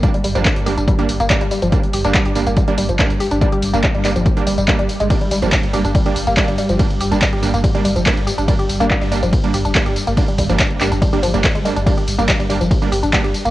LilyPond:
<<
  \new Staff \with { instrumentName = "Supersaw synth" } { \time 4/4 \key g \minor \tempo 4 = 142 <g bes d'>16 r8 <g bes d'>8. <g bes d'>16 r8 <g bes d'>16 r8 <g bes d'>16 r8. | <g bes d'>16 r8 <g bes d'>8. <g bes d'>16 r8 <g bes d'>16 r8 <g bes d'>16 r8. | <g bes d'>16 r8 <g bes d'>8. <g bes d'>16 r8 <g bes d'>16 r8 <g bes d'>16 r8. | <g bes d'>16 r8 <g bes d'>8. <g bes d'>16 r8 <g bes d'>16 r8 <g bes d'>16 r8. |
<g bes d'>16 r8 <g bes d'>8. <g bes d'>16 r8 <g bes d'>16 r8 <g bes d'>16 r8. | <g bes d'>16 r8 <g bes d'>8. <g bes d'>16 r8 <g bes d'>16 r8 <g bes d'>16 r8. | <g bes d'>16 r8 <g bes d'>8. <g bes d'>16 r8 <g bes d'>16 r16 <g bes d'>16 r8 <g bes d'>16 r16 | <g bes d'>16 r8 <g bes d'>8. <g bes d'>16 r8 <g bes d'>16 r8 <g bes d'>16 r8. | }
  \new Staff \with { instrumentName = "Synth arpeggio sound" } { \clef bass \time 4/4 \key g \minor g16 g16 g16 f16 r8 g'16 d'16 g16 g'16 r16 bes16 g16 g16 g16 f16 | r8 g'16 d'16 g16 g'16 r16 bes16 g16 g16 g16 f16 r8 g'16 d'16 | g16 g'16 r16 bes16 g16 g16 g16 f16 r8 g16 g16 g16 g16 r16 aes16 | g16 g16 g16 f16 r8 g'16 d'16 g16 g'16 r16 bes16 g16 g16 g16 f16 |
r8 g'16 d'16 g16 g'16 r16 bes16 g16 g16 g16 f16 r8 g'16 d'16 | g16 g'16 r16 bes16 g16 g16 g16 f16 r8 g'16 d'16 g16 g'16 r16 bes16 | g16 g16 g16 f16 r8 g'16 d'16 g16 g'16 f16 g16 aes16 aes16 aes16 d'16 | g16 g'16 r16 bes16 g16 g16 g16 f16 r8 g'16 d'16 g16 g'16 r16 bes16 | }
  \new Staff \with { instrumentName = "Synth drone" } { \clef bass \time 4/4 \key g \minor <g, g>1~ | <g, g>1~ | <g, g>1~ | <g, g>1~ |
<g, g>1~ | <g, g>1~ | <g, g>1 | <g, g>1 | }
  \new Staff \with { instrumentName = "Sub bass" } { \clef bass \time 4/4 \key g \minor r8 g,,16 g,,16 r16 g,,16 g,,16 g,,16 r8 g,,16 g,,16 r16 g,,16 r16 g,,16 | r8 g,,16 g,,16 r16 g,,16 g,,16 g,,16 r8 g,,16 g,,16 r16 g,,16 r16 g,,16 | r8 g,,16 g,,16 r16 g,,16 g,,16 g,,16 r8 g,,16 g,,16 r16 g,,16 r16 g,,16 | r8 g,,16 g,,16 r16 g,,16 g,,16 g,,16 r8 g,,16 g,,16 r16 g,,16 r16 g,,16 |
r8 g,,16 g,,16 r16 g,,16 g,,16 g,,16 r8 g,,16 g,,16 r16 g,,16 r16 g,,16 | r8 g,,16 g,,16 r16 g,,16 g,,16 g,,16 r8 g,,16 g,,16 r16 g,,16 r16 g,,16 | r8 g,,16 g,,16 r16 g,,16 g,,16 g,,16 r8 g,,16 g,,16 r16 g,,16 r16 g,,16 | r8 g,,16 g,,16 r16 g,,16 g,,16 g,,16 r8 g,,16 g,,16 r16 g,,16 r16 g,,16 | }
  \new DrumStaff \with { instrumentName = "Drums" } \drummode { \time 4/4 <hh bd tamb>16 hh16 <hho tamb>16 <hh tamb>16 <hc hh bd tamb>16 hh16 <hho tamb>16 <hh tamb>16 <hh bd tamb>16 hh16 <hho tamb>16 <hh tamb>16 <hc hh bd>16 hh16 <hho tamb>16 <hh tamb>16 | <hh bd tamb>16 hh16 <hho tamb>16 <hh tamb>16 <hc hh bd tamb>16 hh16 <hho tamb>16 <hh tamb>16 <hh bd tamb>16 hh16 <hho tamb>16 <hh tamb>16 <hc hh bd tamb>16 hh16 <hho tamb>16 <hh tamb>16 | <hh bd tamb>16 hh16 <hho tamb>16 <hh tamb>16 <hc hh bd tamb>16 hh16 <hc hho tamb>16 <hh tamb>16 <hh bd tamb>16 hh16 <hho tamb>16 <hh tamb>16 <hc hh bd>16 hh16 <hho tamb>16 <hh tamb>16 | <hh bd cymr tamb>16 hh16 <hho tamb>16 <hh tamb>16 <hc hh bd cymr>16 hh16 <hho tamb>16 <hh tamb>16 <hh bd cymr tamb>16 hh16 <hho tamb>16 <hh tamb>16 <hc hh bd cymr tamb>16 hh16 <hho tamb>16 <hh tamb>16 |
<hh bd cymr tamb>16 hh16 <hho tamb>16 <hh tamb>16 <hc hh bd cymr>16 hh16 <hho tamb>16 <hh tamb>16 <hh bd cymr tamb>16 hh16 <hho tamb>16 <hh tamb>16 <hc hh bd cymr tamb>16 hh16 <hho tamb>16 <hh tamb>16 | <hh bd cymr tamb>16 hh16 <hho tamb>16 <hh tamb>16 <hc hh bd cymr tamb>16 hh16 <hho tamb>16 <hh tamb>16 <hh bd cymr tamb>16 hh16 <hho tamb>16 <hh tamb>16 <hc hh bd cymr>16 hh16 <hho tamb>16 <hh tamb>16 | <hh bd cymr tamb>16 hh16 <hho bd tamb>16 <hh tamb>16 <hc hh bd cymr tamb>16 hh16 <hc hho tamb>16 <hh tamb>16 <hh bd cymr tamb>16 hh16 <hho tamb>16 <hh tamb>16 <hc hh bd cymr tamb>16 hh16 <hho tamb>16 <hh tamb>16 | <hh bd cymr tamb>16 hh16 <hho tamb>16 <hh tamb>16 <hc hh bd cymr tamb>16 hh16 <hho tamb>16 <hh tamb>16 <hh bd cymr tamb>16 hh16 <hho tamb>16 <hh tamb>16 <hc hh bd cymr>16 hh16 <hho tamb>16 <hh tamb>16 | }
>>